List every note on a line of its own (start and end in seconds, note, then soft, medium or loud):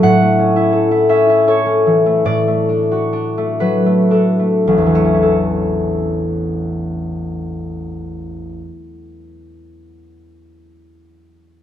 0.00 2.24 A2 medium
0.00 0.20 A3 soft
0.00 0.71 A4 medium
0.00 1.89 F#5 medium
0.21 2.05 A3 soft
0.39 1.08 C#4 soft
0.56 0.90 E4 medium
0.72 1.47 A4 soft
0.91 1.28 E4 medium
1.09 1.65 C#4 medium
1.09 2.30 E5 medium
1.29 2.31 E4 medium
1.48 4.10 A4 medium
1.48 2.30 C#5 medium
1.66 2.30 C#4 soft
1.86 2.30 E3 soft
2.06 2.46 A3 soft
2.25 5.28 A2 medium
2.25 5.28 D5 medium
2.48 3.36 A3 soft
2.69 3.11 D4 soft
2.92 5.28 F#4 soft
3.13 4.10 D4 soft
3.38 3.85 A3 soft
3.60 4.66 F#3 soft
3.60 4.50 B4 medium
3.86 4.38 A3 soft
4.11 5.28 D4 soft
4.11 5.21 A4 soft
4.39 4.94 A3 soft
4.67 8.57 A1 soft
4.67 5.28 F#3 soft
4.77 8.67 E2 soft
4.86 8.76 E3 soft
4.95 8.70 A3 soft
5.04 8.79 C#4 soft
5.14 8.88 E4 soft
5.23 8.97 A4 soft